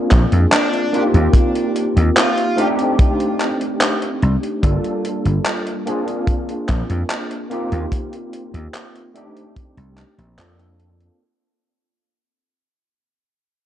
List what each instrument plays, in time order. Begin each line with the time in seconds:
Already playing: tine electric piano A#3 C4 D4 F4 G#4
0.11 slap bass A#1, kick, clap, closed hi-hat
0.32 slap bass F2, closed hi-hat
0.52 lead electric guitar D4, clap, closed hi-hat
0.73 closed hi-hat
0.92 tine electric piano A#3 C4 D#4 F4 G4, closed hi-hat
1.14 slap bass D#2, closed hi-hat
1.34 kick, closed hi-hat
1.55 closed hi-hat
1.76 closed hi-hat
1.97 slap bass D#2, closed hi-hat
2.17 lead electric guitar F4, clap, closed hi-hat
2.38 closed hi-hat
2.56 tine electric piano A3 C4 D4 D#4 G4, closed hi-hat
2.79 closed hi-hat
2.99 kick, closed hi-hat
3.20 closed hi-hat
3.40 clap, closed hi-hat
3.61 closed hi-hat
3.81 clap, closed hi-hat
4.02 closed hi-hat
4.22 slap bass C2, closed hi-hat
4.43 closed hi-hat
4.62 slap bass G1, tine electric piano G3 A#3 D4 F4 A4, kick, closed hi-hat
4.84 closed hi-hat
5.05 closed hi-hat
5.25 slap bass G1, closed hi-hat
5.46 clap, closed hi-hat
5.67 closed hi-hat
5.86 tine electric piano A#3 C4 D4 F4 G#4, closed hi-hat
6.08 closed hi-hat
6.27 kick, closed hi-hat
6.49 closed hi-hat
6.69 slap bass A#1, kick, clap, closed hi-hat
6.90 slap bass F2, closed hi-hat
7.10 clap, closed hi-hat
7.31 closed hi-hat
7.50 tine electric piano A#3 C4 D#4 F4 G4, closed hi-hat
7.72 slap bass D#2, closed hi-hat
7.92 kick, closed hi-hat
8.13 closed hi-hat
8.33 closed hi-hat
8.54 slap bass D#2, closed hi-hat
8.74 clap, closed hi-hat
8.96 closed hi-hat
9.14 tine electric piano A3 C4 D4 D#4 G4, closed hi-hat
9.37 closed hi-hat
9.56 kick, closed hi-hat
9.77 slap bass C2, closed hi-hat
9.98 clap, closed hi-hat
10.18 slap bass A#1, closed hi-hat
10.38 slap bass F2, tine electric piano A#3 C4 D4 F4 A4, clap, closed hi-hat
10.59 closed hi-hat
10.80 closed hi-hat
11.00 closed hi-hat